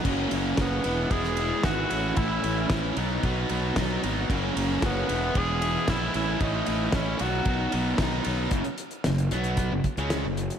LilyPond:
<<
  \new Staff \with { instrumentName = "Tenor saxophone" } { \time 4/4 \key b \major \tempo 4 = 113 r4 b4 gis'4 fis'4 | e'4 r2. | r4 b4 gis'4 e'8 e'8 | dis'4 cis'8 fis'4. r4 |
r1 | }
  \new Staff \with { instrumentName = "Overdriven electric guitar" } { \time 4/4 \key b \major <fis, cis fis ais cis'>8 <fis ais cis'>8 <cis fis ais cis'>8 <e gis b e'>8 <e gis b e'>8 <gis b e'>8 <e gis b e'>8 <a, e a cis' e'>8 | <a, e a cis' e'>8 <a cis' e'>8 <e a cis' e'>8 <b, fis b dis'>8 <b, fis b dis'>8 <fis b dis'>8 <b, fis b dis'>8 <fis b dis'>8 | <fis, cis fis ais cis'>8 <fis ais cis'>8 <cis fis ais cis'>8 <e gis b e'>8 <e gis b e'>8 <gis b e'>8 <e gis b e'>8 <a, e a cis' e'>8 | <a, e a cis' e'>8 <a cis' e'>8 <e a cis' e'>8 <b, dis fis b dis'>8 <b, dis fis b dis'>8 <fis b dis'>8 <dis fis b dis'>8 <fis b dis'>8 |
<fis, cis>16 r8. <fis, cis>8 <b, fis b>8. <fis, cis>16 r16 <cis gis cis'>8 <fis, cis>8 r16 | }
  \new Staff \with { instrumentName = "Fingered electric bass" } { \clef bass \time 4/4 \key b \major fis,,8 fis,,8 fis,,8 e,,8 e,,4 gis,,8 a,,8 | a,,8 a,,8 a,,8 b,,8 b,,8 b,,8 b,,8 gis,,8 | fis,,8 fis,,8 fis,,8 e,,8 e,,4 ais,,8 a,,8 | a,,8 a,,8 a,,8 b,,8 b,,8 b,,8 b,,8 b,,8 |
fis,,16 r8. fis,,8 b,,8. fis,,16 r16 cis,8 fis,,8 r16 | }
  \new DrumStaff \with { instrumentName = "Drums" } \drummode { \time 4/4 <cymc bd cymr>8 cymr8 <bd cymr sn>8 cymr8 <bd cymr>16 sn16 cymr8 <bd cymr sn>8 cymr8 | <bd cymr>8 cymr8 <bd cymr sn>8 cymr8 <bd cymr>8 cymr8 <bd cymr sn>8 cymr8 | <bd cymr>8 cymr8 <bd cymr sn>8 cymr8 <bd cymr>8 cymr8 <bd cymr sn>8 cymr8 | <bd cymr>8 cymr8 <bd cymr sn>8 cymr8 <bd cymr>8 cymr8 <bd cymr sn>8 cymr8 |
<hh bd>16 hh16 hh16 hh16 <hh sn>16 hh16 hh16 hh16 <hh bd>8 <hh bd>16 hh16 <hh sn>8 hh16 hh16 | }
>>